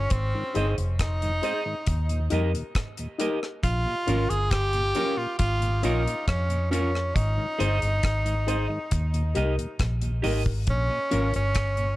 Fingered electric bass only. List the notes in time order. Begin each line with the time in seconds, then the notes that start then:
0.11 G#1
0.56 G1
0.78 F1
1.88 D#2
2.32 F2
3.64 A#1
4.08 G#1
4.30 G1
5.40 G#1
5.84 A#1
6.28 F2
7.16 G#1
7.60 G1
7.83 G1
8.04 G#1
8.92 D#2
9.37 C2
9.80 A#1
10.25 G#1
10.68 A#1
11.13 G#1
11.36 G1